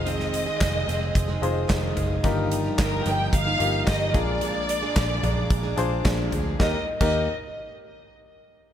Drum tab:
CC |----------------|----------------|----------------|---x------------|
HH |x-x-x-x-x-x-x-x-|x-x-x-x-x-x-x-x-|x-x-x-x-x-x-x-x-|----------------|
CP |----x-------x---|----x-------x---|----x-------x---|----------------|
SD |-o--o-------o---|----o-------o---|----o-------o---|o---------------|
FT |--------------o-|--------------o-|------o-------o-|----------------|
BD |----o---o---o---|o---o---o---o-o-|----o---o---o---|o--o------------|